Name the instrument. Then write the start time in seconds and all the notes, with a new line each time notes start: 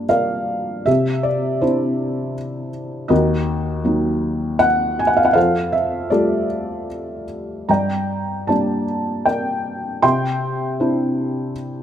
felt piano
Already playing: G2 G3 A#3 D4 G4 A#4 D5
0.09 A#4 D5 F5
0.86 C3 G4 E5
1.23 D5
1.61 C4 D4 E4 G4 C5
3.08 D#2 F#4 A#4 D#5
3.84 F#3 A#3 D#4
4.59 F#5
4.99 G#5
5.07 F#5
5.17 F5
5.25 F#5
5.33 F2 A4 C5 F5
5.72 E5
6.10 G3 A3 F4 G4 A4 D5
7.69 G2 D5 G5 A#5
8.47 G3 A#3 D4 D5 A5
9.26 A#4 D5 G5
10.02 C3 E5 G5 C6
10.80 C4 D4 E4